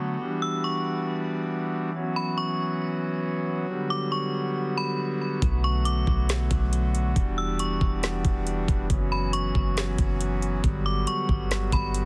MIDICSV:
0, 0, Header, 1, 5, 480
1, 0, Start_track
1, 0, Tempo, 434783
1, 225, Time_signature, 4, 2, 24, 8
1, 13304, End_track
2, 0, Start_track
2, 0, Title_t, "Synth bell"
2, 0, Program_c, 0, 98
2, 465, Note_on_c, 0, 88, 72
2, 693, Note_off_c, 0, 88, 0
2, 708, Note_on_c, 0, 85, 71
2, 1158, Note_off_c, 0, 85, 0
2, 2388, Note_on_c, 0, 83, 70
2, 2615, Note_off_c, 0, 83, 0
2, 2623, Note_on_c, 0, 85, 84
2, 3075, Note_off_c, 0, 85, 0
2, 4309, Note_on_c, 0, 86, 76
2, 4535, Note_off_c, 0, 86, 0
2, 4546, Note_on_c, 0, 85, 84
2, 5223, Note_off_c, 0, 85, 0
2, 5271, Note_on_c, 0, 83, 86
2, 5497, Note_off_c, 0, 83, 0
2, 6227, Note_on_c, 0, 85, 83
2, 6455, Note_off_c, 0, 85, 0
2, 6462, Note_on_c, 0, 86, 88
2, 6915, Note_off_c, 0, 86, 0
2, 8146, Note_on_c, 0, 88, 74
2, 8374, Note_off_c, 0, 88, 0
2, 8388, Note_on_c, 0, 85, 72
2, 8838, Note_off_c, 0, 85, 0
2, 10067, Note_on_c, 0, 83, 66
2, 10294, Note_off_c, 0, 83, 0
2, 10302, Note_on_c, 0, 85, 85
2, 10755, Note_off_c, 0, 85, 0
2, 11987, Note_on_c, 0, 86, 76
2, 12214, Note_off_c, 0, 86, 0
2, 12225, Note_on_c, 0, 85, 81
2, 12902, Note_off_c, 0, 85, 0
2, 12951, Note_on_c, 0, 83, 83
2, 13176, Note_off_c, 0, 83, 0
2, 13304, End_track
3, 0, Start_track
3, 0, Title_t, "Pipe organ"
3, 0, Program_c, 1, 19
3, 0, Note_on_c, 1, 50, 71
3, 0, Note_on_c, 1, 54, 63
3, 0, Note_on_c, 1, 57, 60
3, 0, Note_on_c, 1, 59, 63
3, 0, Note_on_c, 1, 66, 76
3, 181, Note_off_c, 1, 54, 0
3, 188, Note_off_c, 1, 50, 0
3, 206, Note_off_c, 1, 57, 0
3, 225, Note_on_c, 1, 52, 67
3, 225, Note_on_c, 1, 55, 61
3, 225, Note_on_c, 1, 62, 63
3, 2101, Note_off_c, 1, 59, 0
3, 2101, Note_off_c, 1, 66, 0
3, 2126, Note_off_c, 1, 55, 0
3, 2126, Note_off_c, 1, 62, 0
3, 2145, Note_on_c, 1, 61, 63
3, 2145, Note_on_c, 1, 66, 73
3, 2146, Note_on_c, 1, 54, 65
3, 2146, Note_on_c, 1, 59, 60
3, 4027, Note_off_c, 1, 52, 0
3, 4043, Note_off_c, 1, 59, 0
3, 4046, Note_off_c, 1, 61, 0
3, 4065, Note_on_c, 1, 50, 67
3, 4065, Note_on_c, 1, 55, 62
3, 4065, Note_on_c, 1, 59, 64
3, 5964, Note_off_c, 1, 50, 0
3, 5966, Note_off_c, 1, 55, 0
3, 5986, Note_on_c, 1, 50, 67
3, 5986, Note_on_c, 1, 57, 62
3, 7861, Note_off_c, 1, 54, 0
3, 7886, Note_off_c, 1, 50, 0
3, 7886, Note_off_c, 1, 57, 0
3, 7906, Note_on_c, 1, 52, 68
3, 7906, Note_on_c, 1, 55, 61
3, 7906, Note_on_c, 1, 62, 61
3, 9781, Note_off_c, 1, 66, 0
3, 9803, Note_off_c, 1, 52, 0
3, 9806, Note_off_c, 1, 55, 0
3, 9806, Note_off_c, 1, 62, 0
3, 9825, Note_on_c, 1, 52, 70
3, 9825, Note_on_c, 1, 54, 62
3, 9826, Note_on_c, 1, 61, 63
3, 9826, Note_on_c, 1, 66, 73
3, 11726, Note_off_c, 1, 52, 0
3, 11726, Note_off_c, 1, 61, 0
3, 11745, Note_on_c, 1, 50, 67
3, 11745, Note_on_c, 1, 55, 61
3, 13304, Note_off_c, 1, 50, 0
3, 13304, Note_off_c, 1, 54, 0
3, 13304, Note_off_c, 1, 55, 0
3, 13304, Note_off_c, 1, 59, 0
3, 13304, Note_off_c, 1, 66, 0
3, 13304, End_track
4, 0, Start_track
4, 0, Title_t, "808-style bass"
4, 0, Program_c, 2, 38
4, 5986, Note_on_c, 2, 35, 110
4, 6677, Note_off_c, 2, 35, 0
4, 6704, Note_on_c, 2, 35, 101
4, 7166, Note_off_c, 2, 35, 0
4, 7185, Note_on_c, 2, 35, 102
4, 7876, Note_off_c, 2, 35, 0
4, 7906, Note_on_c, 2, 28, 110
4, 8597, Note_off_c, 2, 28, 0
4, 8624, Note_on_c, 2, 28, 105
4, 9086, Note_off_c, 2, 28, 0
4, 9105, Note_on_c, 2, 28, 109
4, 9566, Note_off_c, 2, 28, 0
4, 9587, Note_on_c, 2, 28, 106
4, 9817, Note_off_c, 2, 28, 0
4, 9826, Note_on_c, 2, 30, 111
4, 10517, Note_off_c, 2, 30, 0
4, 10544, Note_on_c, 2, 30, 104
4, 11006, Note_off_c, 2, 30, 0
4, 11024, Note_on_c, 2, 30, 106
4, 11716, Note_off_c, 2, 30, 0
4, 11745, Note_on_c, 2, 31, 112
4, 12206, Note_off_c, 2, 31, 0
4, 12464, Note_on_c, 2, 31, 106
4, 12925, Note_off_c, 2, 31, 0
4, 12944, Note_on_c, 2, 31, 104
4, 13304, Note_off_c, 2, 31, 0
4, 13304, End_track
5, 0, Start_track
5, 0, Title_t, "Drums"
5, 5986, Note_on_c, 9, 36, 103
5, 5986, Note_on_c, 9, 42, 81
5, 6096, Note_off_c, 9, 36, 0
5, 6096, Note_off_c, 9, 42, 0
5, 6463, Note_on_c, 9, 42, 84
5, 6573, Note_off_c, 9, 42, 0
5, 6704, Note_on_c, 9, 36, 80
5, 6815, Note_off_c, 9, 36, 0
5, 6946, Note_on_c, 9, 42, 73
5, 6953, Note_on_c, 9, 38, 113
5, 7057, Note_off_c, 9, 42, 0
5, 7063, Note_off_c, 9, 38, 0
5, 7184, Note_on_c, 9, 42, 73
5, 7185, Note_on_c, 9, 36, 106
5, 7294, Note_off_c, 9, 42, 0
5, 7295, Note_off_c, 9, 36, 0
5, 7427, Note_on_c, 9, 42, 88
5, 7537, Note_off_c, 9, 42, 0
5, 7669, Note_on_c, 9, 42, 62
5, 7779, Note_off_c, 9, 42, 0
5, 7906, Note_on_c, 9, 36, 100
5, 7906, Note_on_c, 9, 42, 84
5, 8016, Note_off_c, 9, 36, 0
5, 8016, Note_off_c, 9, 42, 0
5, 8383, Note_on_c, 9, 42, 82
5, 8493, Note_off_c, 9, 42, 0
5, 8624, Note_on_c, 9, 36, 81
5, 8735, Note_off_c, 9, 36, 0
5, 8866, Note_on_c, 9, 42, 69
5, 8873, Note_on_c, 9, 38, 116
5, 8977, Note_off_c, 9, 42, 0
5, 8983, Note_off_c, 9, 38, 0
5, 9103, Note_on_c, 9, 42, 72
5, 9105, Note_on_c, 9, 36, 106
5, 9214, Note_off_c, 9, 42, 0
5, 9215, Note_off_c, 9, 36, 0
5, 9347, Note_on_c, 9, 42, 84
5, 9458, Note_off_c, 9, 42, 0
5, 9587, Note_on_c, 9, 36, 91
5, 9588, Note_on_c, 9, 42, 62
5, 9697, Note_off_c, 9, 36, 0
5, 9698, Note_off_c, 9, 42, 0
5, 9825, Note_on_c, 9, 42, 81
5, 9826, Note_on_c, 9, 36, 102
5, 9936, Note_off_c, 9, 36, 0
5, 9936, Note_off_c, 9, 42, 0
5, 10303, Note_on_c, 9, 42, 80
5, 10413, Note_off_c, 9, 42, 0
5, 10544, Note_on_c, 9, 36, 80
5, 10655, Note_off_c, 9, 36, 0
5, 10786, Note_on_c, 9, 42, 69
5, 10793, Note_on_c, 9, 38, 119
5, 10897, Note_off_c, 9, 42, 0
5, 10903, Note_off_c, 9, 38, 0
5, 11023, Note_on_c, 9, 42, 75
5, 11024, Note_on_c, 9, 36, 105
5, 11133, Note_off_c, 9, 42, 0
5, 11135, Note_off_c, 9, 36, 0
5, 11267, Note_on_c, 9, 42, 87
5, 11377, Note_off_c, 9, 42, 0
5, 11508, Note_on_c, 9, 42, 61
5, 11619, Note_off_c, 9, 42, 0
5, 11745, Note_on_c, 9, 36, 101
5, 11745, Note_on_c, 9, 42, 80
5, 11855, Note_off_c, 9, 42, 0
5, 11856, Note_off_c, 9, 36, 0
5, 12222, Note_on_c, 9, 42, 81
5, 12333, Note_off_c, 9, 42, 0
5, 12464, Note_on_c, 9, 36, 82
5, 12574, Note_off_c, 9, 36, 0
5, 12706, Note_on_c, 9, 42, 73
5, 12713, Note_on_c, 9, 38, 118
5, 12816, Note_off_c, 9, 42, 0
5, 12823, Note_off_c, 9, 38, 0
5, 12943, Note_on_c, 9, 42, 69
5, 12944, Note_on_c, 9, 36, 100
5, 13054, Note_off_c, 9, 42, 0
5, 13055, Note_off_c, 9, 36, 0
5, 13187, Note_on_c, 9, 42, 87
5, 13297, Note_off_c, 9, 42, 0
5, 13304, End_track
0, 0, End_of_file